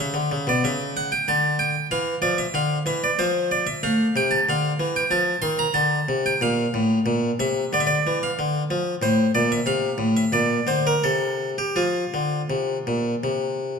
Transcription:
0.00 C#3 E5
0.14 D3
0.32 C#3
0.47 B2 D5
0.64 C#3 E5
0.97 F#5
1.12 G5
1.28 D3 A5
1.59 G5
1.91 E3 F5
2.22 F3 D5
2.38 E5
2.54 D3 F5
2.86 E3 E5
3.04 D5
3.19 F3 C5
3.51 D5
3.67 E5
3.83 A3 F5
4.16 C3 G5
4.31 A5
4.49 D3 F5
4.80 E3
4.96 G5
5.11 F3 A5
5.42 D#3 C6
5.59 A#5
5.74 D3 A5
6.09 C3
6.26 G5
6.41 A#2 F5
6.74 A2
7.06 A#2
7.40 C3 E5
7.73 D3 D5
7.80 E5
7.87 D5
8.07 E3
8.23 F5
8.39 D3
8.71 F3
9.02 A2 C5
9.35 A#2 D5
9.52 E5
9.66 C3 F5
9.98 A2
10.17 E5
10.33 A#2 D5
10.67 D3 C5
10.87 A#4
11.04 C3 A4
11.58 G4
11.76 F3 F4
12.14 D3
12.50 C3
12.87 A#2
13.24 C3

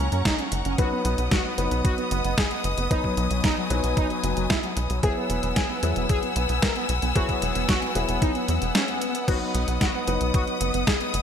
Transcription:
Already playing: F#3 A#3 C#4 G#4 A#4 F#5 A#5 C#6
0.12 F#2 C#4, closed hi-hat
0.25 D#4, kick, snare, closed hi-hat
0.39 C#4, closed hi-hat
0.52 F#1, closed hi-hat
0.65 F#1 C#4, closed hi-hat
0.78 F#3 B3 D#4 F#4 B4 D#5 D#6, kick, closed hi-hat
0.92 B3
1.05 B1 B3, closed hi-hat
1.18 B1 B3, closed hi-hat
1.31 F#4, kick, snare, closed hi-hat
1.45 B3
1.58 F#1 F#3 B3 D#4 B4, closed hi-hat
1.71 B1 B3, closed hi-hat
1.85 F#4, kick, closed hi-hat
1.98 B3, closed hi-hat
2.11 F#1 B3, closed hi-hat
2.24 F#1 B3, closed hi-hat
2.38 G#4, kick, snare, closed hi-hat
2.51 B3, closed hi-hat
2.64 F#1, closed hi-hat
2.78 F#1 B3, closed hi-hat
2.91 F#3 B3 D#4 B4 G#5, kick, closed hi-hat
3.04 F#3, kick
3.17 B1 F#3, closed hi-hat
3.31 B1 F#3, closed hi-hat
3.44 D#4, kick, snare, closed hi-hat
3.57 F#3
3.70 B1 F#3 B3 D#4 B4, closed hi-hat
3.84 B1 F#3, closed hi-hat
3.97 D#4, kick, closed hi-hat
4.10 F#3, closed hi-hat
4.24 F#1 F#3, closed hi-hat
4.37 F#1 F#3, closed hi-hat
4.50 E4, kick, snare, closed hi-hat
4.63 F#3, closed hi-hat
4.77 B1, closed hi-hat
4.90 B1 F#3, closed hi-hat
5.03 F#3 B3 E4 G#4 B4 F#5 G#5 E6, kick, closed hi-hat
5.17 B3
5.30 E1 B3, closed hi-hat
5.43 E1 B3, closed hi-hat
5.56 G#4, kick, snare, closed hi-hat
5.70 B3
5.83 E2 F#3 B3 E4 G#4, closed hi-hat
5.96 E1 B3, closed hi-hat
6.09 G#4, kick, closed hi-hat
6.23 B3, closed hi-hat
6.36 B1 B3, closed hi-hat
6.49 B1 B3, closed hi-hat
6.62 A#4, kick, snare, closed hi-hat
6.76 B3, closed hi-hat
6.89 B1, closed hi-hat
7.02 B1 B3, closed hi-hat
7.15 F#3 B3 E4 F#4 G#4, kick, closed hi-hat
7.29 B3, kick, closed hi-hat
7.42 E1 B3, closed hi-hat
7.55 E1 B3, closed hi-hat
7.69 F#4, kick, snare, closed hi-hat
7.82 B3, closed hi-hat
7.95 E1 F#3 B3 E4 G#4, closed hi-hat
8.09 E1 B3, closed hi-hat
8.22 D#4, kick, closed hi-hat, swell
8.35 B3, closed hi-hat
8.48 E2 B3, closed hi-hat
8.62 E1 B3, closed hi-hat
8.75 C#4, snare, closed hi-hat
8.88 B3, closed hi-hat
9.02 closed hi-hat
9.15 B3, closed hi-hat
9.28 F#3 B3 D#4 F#4 B4 D#5 D#6, kick, closed hi-hat, crash
9.41 B3
9.54 B1 B3, closed hi-hat
9.68 B1 B3, closed hi-hat
9.81 F#4, kick, snare, closed hi-hat
9.94 B3
10.07 F#1 F#3 B3 D#4 B4, closed hi-hat
10.21 B1 B3, closed hi-hat
10.34 F#4, kick, closed hi-hat
10.47 B3, closed hi-hat
10.61 F#1 B3, closed hi-hat
10.74 F#1 B3, closed hi-hat
10.87 G#4, kick, snare, closed hi-hat
11.00 B3, closed hi-hat
11.14 F#1, closed hi-hat

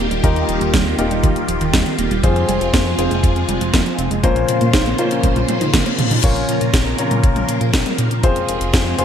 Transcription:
Already playing: D#3 G3 A#3 D#4 F4 G4 A#4
0.11 D#1 G3, closed hi-hat
0.24 D#2 D#3 D#4 F4 G4 A#4, kick, closed hi-hat
0.36 D#2, closed hi-hat
0.49 D#1 F3, closed hi-hat
0.61 D#1 D#3, closed hi-hat
0.74 D#2 G3, kick, snare, closed hi-hat
0.86 D#3
0.99 D#1 A#3 D#4 F4 G4 A#4, closed hi-hat
1.11 D#1 G3, closed hi-hat
1.23 D#2 D#3, kick, closed hi-hat
1.36 D#2, closed hi-hat
1.48 D#1 F3, closed hi-hat
1.61 D#1 D#3, closed hi-hat
1.73 D#2 G3, kick, snare, closed hi-hat
1.86 D#3, closed hi-hat
1.99 D#1 A#3, closed hi-hat
2.11 D#1 G3, closed hi-hat
2.23 F2 C3 F3 G#3 C4 F4 G#4 C5, kick, closed hi-hat
2.36 F2, closed hi-hat
2.49 F1 G3, closed hi-hat
2.61 F1 F3, closed hi-hat
2.73 F2 A#3, kick, snare, closed hi-hat
2.86 F3
2.98 F1 C4 F4 G#4 C5, closed hi-hat
3.11 F1 G#3, closed hi-hat
3.23 F2 F3, kick, closed hi-hat
3.36 F2, closed hi-hat
3.49 F1 G3, closed hi-hat
3.61 F1 F3, closed hi-hat
3.73 F2 A#3, kick, snare, closed hi-hat
3.86 F3, closed hi-hat
3.98 F1 C4, closed hi-hat
4.11 F1 G#3, closed hi-hat
4.23 A#1 C#3 F3 A#3 C#4 F4 A#4 C5, kick, closed hi-hat
4.36 A#2, closed hi-hat
4.49 A#2 C4, closed hi-hat
4.61 A#2 A#3, closed hi-hat
4.73 A#1 D#4, kick, snare, closed hi-hat
4.86 A#3, closed hi-hat
4.98 A#2 C#4 F4 A#4 C5, closed hi-hat
5.11 A#2 C#4, closed hi-hat
5.23 A#1 A#3, kick, closed hi-hat, high tom, reverse cymbal
5.36 A#2, closed hi-hat, high tom
5.49 A#2 C4, closed hi-hat, high tom
5.61 A#2 D#4, closed hi-hat, mid tom
5.74 A#1 A#3, kick, snare, closed hi-hat, mid tom
5.86 A#3, closed hi-hat
5.99 A#2 F3, closed hi-hat, mid tom
6.11 A#2 D#4, closed hi-hat, mid tom
6.24 A#1 C#3 F3 A#3 C#4 F4 A#4 C#5, kick, closed hi-hat, crash
6.36 closed hi-hat
6.49 A#2, closed hi-hat
6.61 A#2, closed hi-hat
6.74 A#1, kick, snare, closed hi-hat
6.98 A#2 C#4 F4 A#4 C#5, closed hi-hat
7.11 A#2, closed hi-hat, high tom
7.24 A#1, kick, closed hi-hat
7.36 closed hi-hat, high tom
7.49 A#2, closed hi-hat
7.61 A#2, closed hi-hat
7.74 A#1, kick, snare, closed hi-hat
7.86 closed hi-hat, high tom
7.98 A#2, closed hi-hat
8.11 A#2, closed hi-hat
8.23 F2 C3 G#3 C4 F4 G#4 C5, kick, closed hi-hat
8.36 closed hi-hat
8.48 F1, closed hi-hat
8.61 F1, closed hi-hat
8.73 F2, kick, snare, closed hi-hat
8.99 F1 C4 F4 G#4 C5, closed hi-hat

